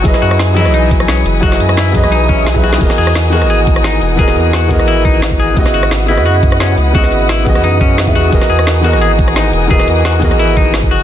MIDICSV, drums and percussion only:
0, 0, Header, 1, 2, 480
1, 0, Start_track
1, 0, Tempo, 344828
1, 70, Time_signature, 4, 2, 24, 8
1, 15355, End_track
2, 0, Start_track
2, 0, Title_t, "Drums"
2, 68, Note_on_c, 9, 36, 117
2, 69, Note_on_c, 9, 42, 102
2, 196, Note_off_c, 9, 42, 0
2, 196, Note_on_c, 9, 37, 36
2, 196, Note_on_c, 9, 38, 37
2, 196, Note_on_c, 9, 42, 40
2, 207, Note_off_c, 9, 36, 0
2, 310, Note_off_c, 9, 42, 0
2, 310, Note_on_c, 9, 42, 68
2, 335, Note_off_c, 9, 37, 0
2, 335, Note_off_c, 9, 38, 0
2, 434, Note_on_c, 9, 37, 53
2, 449, Note_off_c, 9, 42, 0
2, 549, Note_on_c, 9, 38, 115
2, 549, Note_on_c, 9, 42, 99
2, 573, Note_off_c, 9, 37, 0
2, 688, Note_off_c, 9, 38, 0
2, 688, Note_off_c, 9, 42, 0
2, 789, Note_on_c, 9, 42, 72
2, 912, Note_off_c, 9, 42, 0
2, 912, Note_on_c, 9, 37, 35
2, 912, Note_on_c, 9, 42, 42
2, 1028, Note_off_c, 9, 42, 0
2, 1028, Note_on_c, 9, 42, 97
2, 1051, Note_off_c, 9, 37, 0
2, 1167, Note_off_c, 9, 42, 0
2, 1269, Note_on_c, 9, 36, 105
2, 1269, Note_on_c, 9, 42, 72
2, 1394, Note_on_c, 9, 37, 55
2, 1408, Note_off_c, 9, 36, 0
2, 1408, Note_off_c, 9, 42, 0
2, 1509, Note_on_c, 9, 38, 110
2, 1509, Note_on_c, 9, 42, 94
2, 1533, Note_off_c, 9, 37, 0
2, 1648, Note_off_c, 9, 38, 0
2, 1648, Note_off_c, 9, 42, 0
2, 1751, Note_on_c, 9, 42, 69
2, 1890, Note_off_c, 9, 42, 0
2, 1989, Note_on_c, 9, 36, 121
2, 1991, Note_on_c, 9, 42, 105
2, 2117, Note_off_c, 9, 42, 0
2, 2117, Note_on_c, 9, 37, 36
2, 2117, Note_on_c, 9, 38, 37
2, 2117, Note_on_c, 9, 42, 40
2, 2128, Note_off_c, 9, 36, 0
2, 2231, Note_off_c, 9, 42, 0
2, 2231, Note_on_c, 9, 42, 72
2, 2256, Note_off_c, 9, 37, 0
2, 2256, Note_off_c, 9, 38, 0
2, 2354, Note_on_c, 9, 37, 55
2, 2370, Note_off_c, 9, 42, 0
2, 2469, Note_on_c, 9, 38, 112
2, 2469, Note_on_c, 9, 42, 96
2, 2494, Note_off_c, 9, 37, 0
2, 2594, Note_off_c, 9, 42, 0
2, 2594, Note_on_c, 9, 42, 38
2, 2608, Note_off_c, 9, 38, 0
2, 2710, Note_off_c, 9, 42, 0
2, 2710, Note_on_c, 9, 42, 72
2, 2711, Note_on_c, 9, 36, 61
2, 2834, Note_off_c, 9, 42, 0
2, 2834, Note_on_c, 9, 37, 35
2, 2834, Note_on_c, 9, 42, 40
2, 2850, Note_off_c, 9, 36, 0
2, 2951, Note_off_c, 9, 42, 0
2, 2951, Note_on_c, 9, 42, 102
2, 2973, Note_off_c, 9, 37, 0
2, 3090, Note_off_c, 9, 42, 0
2, 3191, Note_on_c, 9, 36, 105
2, 3191, Note_on_c, 9, 42, 71
2, 3330, Note_off_c, 9, 42, 0
2, 3331, Note_off_c, 9, 36, 0
2, 3431, Note_on_c, 9, 38, 112
2, 3431, Note_on_c, 9, 42, 102
2, 3556, Note_on_c, 9, 36, 60
2, 3570, Note_off_c, 9, 38, 0
2, 3570, Note_off_c, 9, 42, 0
2, 3671, Note_on_c, 9, 42, 72
2, 3696, Note_off_c, 9, 36, 0
2, 3796, Note_on_c, 9, 38, 79
2, 3810, Note_off_c, 9, 42, 0
2, 3910, Note_on_c, 9, 42, 108
2, 3910, Note_on_c, 9, 49, 80
2, 3912, Note_on_c, 9, 36, 124
2, 3935, Note_off_c, 9, 38, 0
2, 4036, Note_off_c, 9, 42, 0
2, 4036, Note_on_c, 9, 37, 37
2, 4036, Note_on_c, 9, 38, 37
2, 4036, Note_on_c, 9, 42, 41
2, 4049, Note_off_c, 9, 49, 0
2, 4051, Note_off_c, 9, 36, 0
2, 4149, Note_off_c, 9, 42, 0
2, 4149, Note_on_c, 9, 42, 71
2, 4175, Note_off_c, 9, 37, 0
2, 4175, Note_off_c, 9, 38, 0
2, 4274, Note_on_c, 9, 37, 58
2, 4289, Note_off_c, 9, 42, 0
2, 4391, Note_on_c, 9, 38, 121
2, 4391, Note_on_c, 9, 42, 100
2, 4413, Note_off_c, 9, 37, 0
2, 4530, Note_off_c, 9, 38, 0
2, 4530, Note_off_c, 9, 42, 0
2, 4630, Note_on_c, 9, 42, 72
2, 4755, Note_off_c, 9, 42, 0
2, 4755, Note_on_c, 9, 37, 37
2, 4755, Note_on_c, 9, 42, 41
2, 4871, Note_off_c, 9, 42, 0
2, 4871, Note_on_c, 9, 42, 96
2, 4894, Note_off_c, 9, 37, 0
2, 5010, Note_off_c, 9, 42, 0
2, 5111, Note_on_c, 9, 36, 108
2, 5111, Note_on_c, 9, 42, 69
2, 5236, Note_on_c, 9, 37, 59
2, 5250, Note_off_c, 9, 36, 0
2, 5250, Note_off_c, 9, 42, 0
2, 5350, Note_on_c, 9, 38, 123
2, 5350, Note_on_c, 9, 42, 97
2, 5375, Note_off_c, 9, 37, 0
2, 5489, Note_off_c, 9, 38, 0
2, 5489, Note_off_c, 9, 42, 0
2, 5590, Note_on_c, 9, 42, 70
2, 5729, Note_off_c, 9, 42, 0
2, 5831, Note_on_c, 9, 36, 121
2, 5831, Note_on_c, 9, 42, 102
2, 5956, Note_off_c, 9, 42, 0
2, 5956, Note_on_c, 9, 37, 39
2, 5956, Note_on_c, 9, 38, 38
2, 5956, Note_on_c, 9, 42, 40
2, 5970, Note_off_c, 9, 36, 0
2, 6072, Note_off_c, 9, 42, 0
2, 6072, Note_on_c, 9, 42, 69
2, 6095, Note_off_c, 9, 37, 0
2, 6095, Note_off_c, 9, 38, 0
2, 6211, Note_off_c, 9, 42, 0
2, 6310, Note_on_c, 9, 38, 125
2, 6310, Note_on_c, 9, 42, 94
2, 6449, Note_off_c, 9, 38, 0
2, 6449, Note_off_c, 9, 42, 0
2, 6549, Note_on_c, 9, 36, 64
2, 6551, Note_on_c, 9, 42, 69
2, 6675, Note_off_c, 9, 42, 0
2, 6675, Note_on_c, 9, 37, 36
2, 6675, Note_on_c, 9, 42, 38
2, 6689, Note_off_c, 9, 36, 0
2, 6788, Note_off_c, 9, 42, 0
2, 6788, Note_on_c, 9, 42, 92
2, 6814, Note_off_c, 9, 37, 0
2, 6927, Note_off_c, 9, 42, 0
2, 7029, Note_on_c, 9, 36, 111
2, 7031, Note_on_c, 9, 42, 69
2, 7168, Note_off_c, 9, 36, 0
2, 7170, Note_off_c, 9, 42, 0
2, 7271, Note_on_c, 9, 38, 127
2, 7271, Note_on_c, 9, 42, 98
2, 7394, Note_on_c, 9, 36, 66
2, 7410, Note_off_c, 9, 38, 0
2, 7410, Note_off_c, 9, 42, 0
2, 7511, Note_on_c, 9, 42, 67
2, 7533, Note_off_c, 9, 36, 0
2, 7650, Note_off_c, 9, 42, 0
2, 7749, Note_on_c, 9, 36, 127
2, 7751, Note_on_c, 9, 42, 99
2, 7876, Note_off_c, 9, 42, 0
2, 7876, Note_on_c, 9, 37, 36
2, 7876, Note_on_c, 9, 38, 41
2, 7876, Note_on_c, 9, 42, 35
2, 7888, Note_off_c, 9, 36, 0
2, 7991, Note_off_c, 9, 42, 0
2, 7991, Note_on_c, 9, 42, 64
2, 8015, Note_off_c, 9, 37, 0
2, 8015, Note_off_c, 9, 38, 0
2, 8115, Note_on_c, 9, 37, 59
2, 8130, Note_off_c, 9, 42, 0
2, 8231, Note_on_c, 9, 38, 127
2, 8231, Note_on_c, 9, 42, 95
2, 8255, Note_off_c, 9, 37, 0
2, 8370, Note_off_c, 9, 38, 0
2, 8370, Note_off_c, 9, 42, 0
2, 8470, Note_on_c, 9, 42, 69
2, 8596, Note_off_c, 9, 42, 0
2, 8596, Note_on_c, 9, 37, 36
2, 8596, Note_on_c, 9, 42, 38
2, 8711, Note_off_c, 9, 42, 0
2, 8711, Note_on_c, 9, 42, 92
2, 8735, Note_off_c, 9, 37, 0
2, 8850, Note_off_c, 9, 42, 0
2, 8950, Note_on_c, 9, 36, 115
2, 8952, Note_on_c, 9, 42, 65
2, 9077, Note_on_c, 9, 37, 59
2, 9089, Note_off_c, 9, 36, 0
2, 9091, Note_off_c, 9, 42, 0
2, 9191, Note_on_c, 9, 38, 127
2, 9191, Note_on_c, 9, 42, 90
2, 9217, Note_off_c, 9, 37, 0
2, 9330, Note_off_c, 9, 38, 0
2, 9330, Note_off_c, 9, 42, 0
2, 9431, Note_on_c, 9, 42, 65
2, 9571, Note_off_c, 9, 42, 0
2, 9670, Note_on_c, 9, 36, 127
2, 9670, Note_on_c, 9, 42, 92
2, 9796, Note_off_c, 9, 42, 0
2, 9796, Note_on_c, 9, 37, 36
2, 9796, Note_on_c, 9, 38, 40
2, 9796, Note_on_c, 9, 42, 36
2, 9809, Note_off_c, 9, 36, 0
2, 9911, Note_off_c, 9, 42, 0
2, 9911, Note_on_c, 9, 42, 63
2, 9936, Note_off_c, 9, 37, 0
2, 9936, Note_off_c, 9, 38, 0
2, 10050, Note_off_c, 9, 42, 0
2, 10151, Note_on_c, 9, 38, 124
2, 10151, Note_on_c, 9, 42, 90
2, 10290, Note_off_c, 9, 38, 0
2, 10290, Note_off_c, 9, 42, 0
2, 10390, Note_on_c, 9, 36, 63
2, 10390, Note_on_c, 9, 42, 67
2, 10515, Note_off_c, 9, 42, 0
2, 10515, Note_on_c, 9, 37, 35
2, 10515, Note_on_c, 9, 42, 37
2, 10530, Note_off_c, 9, 36, 0
2, 10630, Note_off_c, 9, 42, 0
2, 10630, Note_on_c, 9, 42, 92
2, 10654, Note_off_c, 9, 37, 0
2, 10770, Note_off_c, 9, 42, 0
2, 10870, Note_on_c, 9, 36, 114
2, 10872, Note_on_c, 9, 42, 65
2, 11009, Note_off_c, 9, 36, 0
2, 11011, Note_off_c, 9, 42, 0
2, 11111, Note_on_c, 9, 38, 126
2, 11111, Note_on_c, 9, 42, 90
2, 11235, Note_on_c, 9, 36, 64
2, 11250, Note_off_c, 9, 38, 0
2, 11250, Note_off_c, 9, 42, 0
2, 11351, Note_on_c, 9, 42, 63
2, 11374, Note_off_c, 9, 36, 0
2, 11490, Note_off_c, 9, 42, 0
2, 11589, Note_on_c, 9, 42, 99
2, 11590, Note_on_c, 9, 36, 123
2, 11715, Note_off_c, 9, 42, 0
2, 11715, Note_on_c, 9, 37, 34
2, 11715, Note_on_c, 9, 38, 38
2, 11715, Note_on_c, 9, 42, 36
2, 11729, Note_off_c, 9, 36, 0
2, 11831, Note_off_c, 9, 42, 0
2, 11831, Note_on_c, 9, 42, 65
2, 11854, Note_off_c, 9, 37, 0
2, 11854, Note_off_c, 9, 38, 0
2, 11955, Note_on_c, 9, 37, 52
2, 11970, Note_off_c, 9, 42, 0
2, 12068, Note_on_c, 9, 38, 127
2, 12068, Note_on_c, 9, 42, 93
2, 12095, Note_off_c, 9, 37, 0
2, 12208, Note_off_c, 9, 38, 0
2, 12208, Note_off_c, 9, 42, 0
2, 12309, Note_on_c, 9, 42, 67
2, 12434, Note_off_c, 9, 42, 0
2, 12434, Note_on_c, 9, 37, 35
2, 12434, Note_on_c, 9, 42, 38
2, 12550, Note_off_c, 9, 42, 0
2, 12550, Note_on_c, 9, 42, 92
2, 12574, Note_off_c, 9, 37, 0
2, 12689, Note_off_c, 9, 42, 0
2, 12789, Note_on_c, 9, 36, 113
2, 12791, Note_on_c, 9, 42, 63
2, 12915, Note_on_c, 9, 37, 54
2, 12929, Note_off_c, 9, 36, 0
2, 12930, Note_off_c, 9, 42, 0
2, 13030, Note_on_c, 9, 38, 120
2, 13030, Note_on_c, 9, 42, 91
2, 13054, Note_off_c, 9, 37, 0
2, 13169, Note_off_c, 9, 38, 0
2, 13169, Note_off_c, 9, 42, 0
2, 13269, Note_on_c, 9, 42, 62
2, 13408, Note_off_c, 9, 42, 0
2, 13509, Note_on_c, 9, 42, 98
2, 13510, Note_on_c, 9, 36, 120
2, 13636, Note_off_c, 9, 42, 0
2, 13636, Note_on_c, 9, 37, 36
2, 13636, Note_on_c, 9, 38, 36
2, 13636, Note_on_c, 9, 42, 37
2, 13649, Note_off_c, 9, 36, 0
2, 13749, Note_off_c, 9, 42, 0
2, 13749, Note_on_c, 9, 42, 64
2, 13775, Note_off_c, 9, 37, 0
2, 13775, Note_off_c, 9, 38, 0
2, 13888, Note_off_c, 9, 42, 0
2, 13988, Note_on_c, 9, 38, 119
2, 13988, Note_on_c, 9, 42, 97
2, 14128, Note_off_c, 9, 38, 0
2, 14128, Note_off_c, 9, 42, 0
2, 14227, Note_on_c, 9, 42, 70
2, 14230, Note_on_c, 9, 36, 64
2, 14354, Note_off_c, 9, 42, 0
2, 14354, Note_on_c, 9, 37, 33
2, 14354, Note_on_c, 9, 42, 38
2, 14369, Note_off_c, 9, 36, 0
2, 14468, Note_off_c, 9, 42, 0
2, 14468, Note_on_c, 9, 42, 95
2, 14493, Note_off_c, 9, 37, 0
2, 14608, Note_off_c, 9, 42, 0
2, 14709, Note_on_c, 9, 42, 66
2, 14710, Note_on_c, 9, 36, 103
2, 14848, Note_off_c, 9, 42, 0
2, 14849, Note_off_c, 9, 36, 0
2, 14947, Note_on_c, 9, 38, 120
2, 14947, Note_on_c, 9, 42, 95
2, 15075, Note_on_c, 9, 36, 62
2, 15086, Note_off_c, 9, 38, 0
2, 15086, Note_off_c, 9, 42, 0
2, 15189, Note_on_c, 9, 42, 66
2, 15214, Note_off_c, 9, 36, 0
2, 15328, Note_off_c, 9, 42, 0
2, 15355, End_track
0, 0, End_of_file